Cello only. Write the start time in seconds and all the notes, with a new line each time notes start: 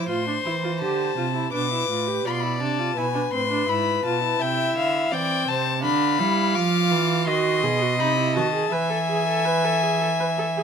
0.09 A2
0.46 E3
0.82 D3
1.18 C3
1.54 B2
1.90 A2
2.26 B2
2.61 C3
2.97 B2
3.33 A2
3.69 G#2
4.05 B2
4.41 C3
4.76 D3
5.12 E3
5.48 C3
5.84 D3
6.19 G3
6.55 F3
6.91 E3
7.27 D#3
7.63 B2
8.00 C3
8.36 D#3
8.73 E3